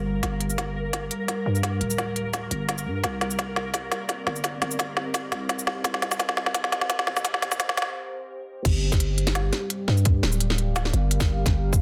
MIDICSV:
0, 0, Header, 1, 5, 480
1, 0, Start_track
1, 0, Key_signature, -2, "minor"
1, 0, Tempo, 350877
1, 316, Time_signature, 4, 2, 24, 8
1, 16166, End_track
2, 0, Start_track
2, 0, Title_t, "Ambient pad"
2, 0, Program_c, 0, 92
2, 0, Note_on_c, 0, 55, 83
2, 0, Note_on_c, 0, 67, 76
2, 0, Note_on_c, 0, 70, 78
2, 0, Note_on_c, 0, 77, 81
2, 4153, Note_on_c, 0, 60, 83
2, 4154, Note_off_c, 0, 67, 0
2, 4156, Note_off_c, 0, 55, 0
2, 4329, Note_on_c, 0, 67, 87
2, 4425, Note_on_c, 0, 74, 76
2, 5060, Note_off_c, 0, 77, 0
2, 5225, Note_on_c, 0, 75, 80
2, 6037, Note_off_c, 0, 70, 0
2, 7974, Note_on_c, 0, 72, 82
2, 8125, Note_off_c, 0, 74, 0
2, 11832, Note_on_c, 0, 55, 88
2, 11836, Note_off_c, 0, 75, 0
2, 12550, Note_off_c, 0, 60, 0
2, 13095, Note_on_c, 0, 70, 78
2, 13240, Note_on_c, 0, 77, 90
2, 13332, Note_off_c, 0, 72, 0
2, 16166, Note_off_c, 0, 55, 0
2, 16166, Note_off_c, 0, 67, 0
2, 16166, Note_off_c, 0, 70, 0
2, 16166, Note_off_c, 0, 77, 0
2, 16166, End_track
3, 0, Start_track
3, 0, Title_t, "Synth texture"
3, 0, Program_c, 1, 99
3, 0, Note_on_c, 1, 70, 88
3, 10876, Note_off_c, 1, 70, 0
3, 16166, End_track
4, 0, Start_track
4, 0, Title_t, "808-style bass"
4, 0, Program_c, 2, 38
4, 0, Note_on_c, 2, 31, 100
4, 302, Note_off_c, 2, 31, 0
4, 314, Note_on_c, 2, 31, 101
4, 1500, Note_off_c, 2, 31, 0
4, 1998, Note_on_c, 2, 43, 101
4, 2462, Note_off_c, 2, 43, 0
4, 2474, Note_on_c, 2, 26, 85
4, 3421, Note_off_c, 2, 26, 0
4, 3432, Note_on_c, 2, 31, 106
4, 3911, Note_on_c, 2, 43, 100
4, 3932, Note_off_c, 2, 31, 0
4, 4135, Note_off_c, 2, 43, 0
4, 4152, Note_on_c, 2, 36, 96
4, 5340, Note_off_c, 2, 36, 0
4, 5834, Note_on_c, 2, 31, 104
4, 6301, Note_off_c, 2, 31, 0
4, 6315, Note_on_c, 2, 31, 88
4, 7261, Note_off_c, 2, 31, 0
4, 7273, Note_on_c, 2, 36, 106
4, 7980, Note_off_c, 2, 36, 0
4, 7994, Note_on_c, 2, 36, 99
4, 9181, Note_off_c, 2, 36, 0
4, 9675, Note_on_c, 2, 31, 103
4, 10141, Note_off_c, 2, 31, 0
4, 10152, Note_on_c, 2, 31, 91
4, 10874, Note_off_c, 2, 31, 0
4, 11835, Note_on_c, 2, 31, 97
4, 13021, Note_off_c, 2, 31, 0
4, 13516, Note_on_c, 2, 43, 106
4, 13982, Note_off_c, 2, 43, 0
4, 13994, Note_on_c, 2, 26, 87
4, 14940, Note_off_c, 2, 26, 0
4, 14957, Note_on_c, 2, 31, 108
4, 15662, Note_off_c, 2, 31, 0
4, 15675, Note_on_c, 2, 31, 95
4, 16166, Note_off_c, 2, 31, 0
4, 16166, End_track
5, 0, Start_track
5, 0, Title_t, "Drums"
5, 313, Note_on_c, 9, 38, 60
5, 313, Note_on_c, 9, 42, 80
5, 315, Note_on_c, 9, 36, 104
5, 450, Note_off_c, 9, 38, 0
5, 450, Note_off_c, 9, 42, 0
5, 452, Note_off_c, 9, 36, 0
5, 554, Note_on_c, 9, 42, 38
5, 682, Note_on_c, 9, 82, 64
5, 691, Note_off_c, 9, 42, 0
5, 795, Note_on_c, 9, 36, 101
5, 795, Note_on_c, 9, 38, 60
5, 795, Note_on_c, 9, 42, 68
5, 819, Note_off_c, 9, 82, 0
5, 931, Note_off_c, 9, 36, 0
5, 932, Note_off_c, 9, 38, 0
5, 932, Note_off_c, 9, 42, 0
5, 1275, Note_on_c, 9, 36, 100
5, 1275, Note_on_c, 9, 38, 64
5, 1275, Note_on_c, 9, 42, 83
5, 1412, Note_off_c, 9, 36, 0
5, 1412, Note_off_c, 9, 38, 0
5, 1412, Note_off_c, 9, 42, 0
5, 1516, Note_on_c, 9, 42, 38
5, 1653, Note_off_c, 9, 42, 0
5, 1755, Note_on_c, 9, 36, 94
5, 1755, Note_on_c, 9, 38, 64
5, 1755, Note_on_c, 9, 42, 70
5, 1892, Note_off_c, 9, 36, 0
5, 1892, Note_off_c, 9, 38, 0
5, 1892, Note_off_c, 9, 42, 0
5, 2124, Note_on_c, 9, 82, 35
5, 2234, Note_on_c, 9, 36, 103
5, 2234, Note_on_c, 9, 38, 63
5, 2234, Note_on_c, 9, 42, 76
5, 2260, Note_off_c, 9, 82, 0
5, 2371, Note_off_c, 9, 36, 0
5, 2371, Note_off_c, 9, 38, 0
5, 2371, Note_off_c, 9, 42, 0
5, 2475, Note_on_c, 9, 42, 36
5, 2604, Note_on_c, 9, 82, 61
5, 2612, Note_off_c, 9, 42, 0
5, 2714, Note_on_c, 9, 36, 104
5, 2714, Note_on_c, 9, 38, 71
5, 2714, Note_on_c, 9, 42, 66
5, 2740, Note_off_c, 9, 82, 0
5, 2851, Note_off_c, 9, 36, 0
5, 2851, Note_off_c, 9, 38, 0
5, 2851, Note_off_c, 9, 42, 0
5, 2955, Note_on_c, 9, 42, 34
5, 3092, Note_off_c, 9, 42, 0
5, 3193, Note_on_c, 9, 36, 100
5, 3195, Note_on_c, 9, 38, 70
5, 3195, Note_on_c, 9, 42, 83
5, 3195, Note_on_c, 9, 82, 37
5, 3330, Note_off_c, 9, 36, 0
5, 3332, Note_off_c, 9, 38, 0
5, 3332, Note_off_c, 9, 42, 0
5, 3332, Note_off_c, 9, 82, 0
5, 3435, Note_on_c, 9, 42, 37
5, 3572, Note_off_c, 9, 42, 0
5, 3673, Note_on_c, 9, 36, 95
5, 3675, Note_on_c, 9, 38, 72
5, 3675, Note_on_c, 9, 42, 65
5, 3802, Note_on_c, 9, 82, 64
5, 3810, Note_off_c, 9, 36, 0
5, 3812, Note_off_c, 9, 38, 0
5, 3812, Note_off_c, 9, 42, 0
5, 3939, Note_off_c, 9, 82, 0
5, 4153, Note_on_c, 9, 36, 106
5, 4156, Note_on_c, 9, 38, 71
5, 4156, Note_on_c, 9, 42, 70
5, 4289, Note_off_c, 9, 36, 0
5, 4292, Note_off_c, 9, 38, 0
5, 4292, Note_off_c, 9, 42, 0
5, 4395, Note_on_c, 9, 38, 72
5, 4395, Note_on_c, 9, 42, 33
5, 4522, Note_on_c, 9, 82, 63
5, 4531, Note_off_c, 9, 38, 0
5, 4531, Note_off_c, 9, 42, 0
5, 4632, Note_on_c, 9, 36, 99
5, 4635, Note_on_c, 9, 38, 76
5, 4635, Note_on_c, 9, 42, 67
5, 4659, Note_off_c, 9, 82, 0
5, 4769, Note_off_c, 9, 36, 0
5, 4771, Note_off_c, 9, 38, 0
5, 4771, Note_off_c, 9, 42, 0
5, 4874, Note_on_c, 9, 38, 73
5, 5011, Note_off_c, 9, 38, 0
5, 5112, Note_on_c, 9, 36, 100
5, 5116, Note_on_c, 9, 38, 83
5, 5116, Note_on_c, 9, 42, 79
5, 5248, Note_off_c, 9, 36, 0
5, 5252, Note_off_c, 9, 38, 0
5, 5252, Note_off_c, 9, 42, 0
5, 5356, Note_on_c, 9, 38, 85
5, 5356, Note_on_c, 9, 42, 36
5, 5493, Note_off_c, 9, 38, 0
5, 5493, Note_off_c, 9, 42, 0
5, 5592, Note_on_c, 9, 36, 91
5, 5596, Note_on_c, 9, 38, 79
5, 5596, Note_on_c, 9, 42, 63
5, 5729, Note_off_c, 9, 36, 0
5, 5733, Note_off_c, 9, 38, 0
5, 5733, Note_off_c, 9, 42, 0
5, 5837, Note_on_c, 9, 38, 81
5, 5963, Note_on_c, 9, 82, 37
5, 5974, Note_off_c, 9, 38, 0
5, 6071, Note_on_c, 9, 36, 107
5, 6075, Note_on_c, 9, 38, 83
5, 6075, Note_on_c, 9, 42, 72
5, 6100, Note_off_c, 9, 82, 0
5, 6208, Note_off_c, 9, 36, 0
5, 6212, Note_off_c, 9, 38, 0
5, 6212, Note_off_c, 9, 42, 0
5, 6316, Note_on_c, 9, 38, 81
5, 6316, Note_on_c, 9, 42, 36
5, 6446, Note_on_c, 9, 82, 68
5, 6453, Note_off_c, 9, 38, 0
5, 6453, Note_off_c, 9, 42, 0
5, 6552, Note_on_c, 9, 36, 99
5, 6559, Note_on_c, 9, 38, 90
5, 6559, Note_on_c, 9, 42, 68
5, 6582, Note_off_c, 9, 82, 0
5, 6689, Note_off_c, 9, 36, 0
5, 6696, Note_off_c, 9, 38, 0
5, 6696, Note_off_c, 9, 42, 0
5, 6795, Note_on_c, 9, 38, 80
5, 6932, Note_off_c, 9, 38, 0
5, 7032, Note_on_c, 9, 36, 101
5, 7036, Note_on_c, 9, 38, 94
5, 7036, Note_on_c, 9, 42, 82
5, 7036, Note_on_c, 9, 82, 41
5, 7169, Note_off_c, 9, 36, 0
5, 7173, Note_off_c, 9, 38, 0
5, 7173, Note_off_c, 9, 42, 0
5, 7173, Note_off_c, 9, 82, 0
5, 7276, Note_on_c, 9, 38, 95
5, 7276, Note_on_c, 9, 42, 36
5, 7413, Note_off_c, 9, 38, 0
5, 7413, Note_off_c, 9, 42, 0
5, 7513, Note_on_c, 9, 36, 95
5, 7515, Note_on_c, 9, 38, 90
5, 7515, Note_on_c, 9, 42, 62
5, 7646, Note_on_c, 9, 82, 73
5, 7650, Note_off_c, 9, 36, 0
5, 7652, Note_off_c, 9, 38, 0
5, 7652, Note_off_c, 9, 42, 0
5, 7758, Note_on_c, 9, 38, 91
5, 7783, Note_off_c, 9, 82, 0
5, 7894, Note_off_c, 9, 38, 0
5, 7993, Note_on_c, 9, 36, 99
5, 7997, Note_on_c, 9, 38, 91
5, 7997, Note_on_c, 9, 42, 74
5, 8126, Note_off_c, 9, 38, 0
5, 8126, Note_on_c, 9, 38, 79
5, 8130, Note_off_c, 9, 36, 0
5, 8133, Note_off_c, 9, 42, 0
5, 8239, Note_off_c, 9, 38, 0
5, 8239, Note_on_c, 9, 38, 96
5, 8239, Note_on_c, 9, 42, 37
5, 8365, Note_off_c, 9, 38, 0
5, 8365, Note_on_c, 9, 38, 86
5, 8365, Note_on_c, 9, 82, 69
5, 8375, Note_off_c, 9, 42, 0
5, 8473, Note_on_c, 9, 36, 101
5, 8476, Note_off_c, 9, 38, 0
5, 8476, Note_on_c, 9, 38, 101
5, 8476, Note_on_c, 9, 42, 63
5, 8501, Note_off_c, 9, 82, 0
5, 8601, Note_off_c, 9, 38, 0
5, 8601, Note_on_c, 9, 38, 82
5, 8609, Note_off_c, 9, 36, 0
5, 8613, Note_off_c, 9, 42, 0
5, 8715, Note_off_c, 9, 38, 0
5, 8715, Note_on_c, 9, 38, 97
5, 8842, Note_off_c, 9, 38, 0
5, 8842, Note_on_c, 9, 38, 86
5, 8953, Note_on_c, 9, 36, 101
5, 8954, Note_off_c, 9, 38, 0
5, 8954, Note_on_c, 9, 38, 101
5, 8954, Note_on_c, 9, 42, 83
5, 9084, Note_off_c, 9, 38, 0
5, 9084, Note_on_c, 9, 38, 82
5, 9090, Note_off_c, 9, 36, 0
5, 9090, Note_off_c, 9, 42, 0
5, 9197, Note_off_c, 9, 38, 0
5, 9197, Note_on_c, 9, 38, 98
5, 9197, Note_on_c, 9, 42, 35
5, 9322, Note_off_c, 9, 38, 0
5, 9322, Note_on_c, 9, 38, 87
5, 9334, Note_off_c, 9, 42, 0
5, 9433, Note_off_c, 9, 38, 0
5, 9433, Note_on_c, 9, 36, 96
5, 9433, Note_on_c, 9, 38, 104
5, 9433, Note_on_c, 9, 42, 69
5, 9562, Note_off_c, 9, 38, 0
5, 9562, Note_on_c, 9, 38, 90
5, 9569, Note_off_c, 9, 36, 0
5, 9570, Note_off_c, 9, 42, 0
5, 9673, Note_off_c, 9, 38, 0
5, 9673, Note_on_c, 9, 38, 101
5, 9803, Note_off_c, 9, 38, 0
5, 9803, Note_on_c, 9, 38, 91
5, 9803, Note_on_c, 9, 82, 39
5, 9911, Note_on_c, 9, 36, 102
5, 9913, Note_off_c, 9, 38, 0
5, 9913, Note_on_c, 9, 38, 98
5, 9913, Note_on_c, 9, 42, 83
5, 9939, Note_off_c, 9, 82, 0
5, 10042, Note_off_c, 9, 38, 0
5, 10042, Note_on_c, 9, 38, 88
5, 10048, Note_off_c, 9, 36, 0
5, 10050, Note_off_c, 9, 42, 0
5, 10155, Note_off_c, 9, 38, 0
5, 10155, Note_on_c, 9, 38, 104
5, 10155, Note_on_c, 9, 42, 37
5, 10281, Note_off_c, 9, 38, 0
5, 10281, Note_on_c, 9, 38, 91
5, 10281, Note_on_c, 9, 82, 70
5, 10292, Note_off_c, 9, 42, 0
5, 10391, Note_on_c, 9, 36, 104
5, 10392, Note_off_c, 9, 38, 0
5, 10392, Note_on_c, 9, 38, 104
5, 10392, Note_on_c, 9, 42, 68
5, 10418, Note_off_c, 9, 82, 0
5, 10522, Note_off_c, 9, 38, 0
5, 10522, Note_on_c, 9, 38, 90
5, 10528, Note_off_c, 9, 36, 0
5, 10529, Note_off_c, 9, 42, 0
5, 10635, Note_off_c, 9, 38, 0
5, 10635, Note_on_c, 9, 38, 106
5, 10635, Note_on_c, 9, 42, 38
5, 10698, Note_off_c, 9, 38, 0
5, 10698, Note_on_c, 9, 38, 94
5, 10772, Note_off_c, 9, 42, 0
5, 10835, Note_off_c, 9, 38, 0
5, 11833, Note_on_c, 9, 36, 126
5, 11836, Note_on_c, 9, 42, 79
5, 11836, Note_on_c, 9, 49, 105
5, 11970, Note_off_c, 9, 36, 0
5, 11973, Note_off_c, 9, 42, 0
5, 11973, Note_off_c, 9, 49, 0
5, 12203, Note_on_c, 9, 36, 112
5, 12205, Note_on_c, 9, 40, 55
5, 12205, Note_on_c, 9, 82, 66
5, 12314, Note_on_c, 9, 42, 73
5, 12339, Note_off_c, 9, 36, 0
5, 12342, Note_off_c, 9, 40, 0
5, 12342, Note_off_c, 9, 82, 0
5, 12451, Note_off_c, 9, 42, 0
5, 12556, Note_on_c, 9, 42, 38
5, 12680, Note_on_c, 9, 40, 85
5, 12692, Note_off_c, 9, 42, 0
5, 12793, Note_on_c, 9, 38, 127
5, 12793, Note_on_c, 9, 42, 91
5, 12817, Note_off_c, 9, 40, 0
5, 12930, Note_off_c, 9, 38, 0
5, 12930, Note_off_c, 9, 42, 0
5, 13032, Note_on_c, 9, 40, 56
5, 13032, Note_on_c, 9, 42, 40
5, 13169, Note_off_c, 9, 40, 0
5, 13169, Note_off_c, 9, 42, 0
5, 13271, Note_on_c, 9, 42, 73
5, 13408, Note_off_c, 9, 42, 0
5, 13514, Note_on_c, 9, 40, 52
5, 13644, Note_on_c, 9, 82, 37
5, 13651, Note_off_c, 9, 40, 0
5, 13752, Note_on_c, 9, 42, 82
5, 13756, Note_on_c, 9, 36, 126
5, 13780, Note_off_c, 9, 82, 0
5, 13889, Note_off_c, 9, 42, 0
5, 13893, Note_off_c, 9, 36, 0
5, 13996, Note_on_c, 9, 40, 83
5, 14120, Note_on_c, 9, 82, 65
5, 14133, Note_off_c, 9, 40, 0
5, 14233, Note_on_c, 9, 42, 74
5, 14257, Note_off_c, 9, 82, 0
5, 14365, Note_on_c, 9, 40, 53
5, 14370, Note_off_c, 9, 42, 0
5, 14476, Note_on_c, 9, 42, 38
5, 14502, Note_off_c, 9, 40, 0
5, 14613, Note_off_c, 9, 42, 0
5, 14717, Note_on_c, 9, 38, 127
5, 14717, Note_on_c, 9, 42, 87
5, 14717, Note_on_c, 9, 82, 38
5, 14846, Note_on_c, 9, 40, 54
5, 14854, Note_off_c, 9, 38, 0
5, 14854, Note_off_c, 9, 42, 0
5, 14854, Note_off_c, 9, 82, 0
5, 14959, Note_on_c, 9, 42, 39
5, 14983, Note_off_c, 9, 40, 0
5, 15096, Note_off_c, 9, 42, 0
5, 15199, Note_on_c, 9, 42, 73
5, 15324, Note_on_c, 9, 36, 120
5, 15327, Note_on_c, 9, 40, 83
5, 15327, Note_on_c, 9, 82, 65
5, 15336, Note_off_c, 9, 42, 0
5, 15460, Note_off_c, 9, 36, 0
5, 15464, Note_off_c, 9, 40, 0
5, 15464, Note_off_c, 9, 82, 0
5, 15675, Note_on_c, 9, 36, 127
5, 15681, Note_on_c, 9, 40, 52
5, 15681, Note_on_c, 9, 42, 79
5, 15811, Note_off_c, 9, 36, 0
5, 15818, Note_off_c, 9, 40, 0
5, 15818, Note_off_c, 9, 42, 0
5, 16043, Note_on_c, 9, 36, 113
5, 16049, Note_on_c, 9, 82, 66
5, 16166, Note_off_c, 9, 36, 0
5, 16166, Note_off_c, 9, 82, 0
5, 16166, End_track
0, 0, End_of_file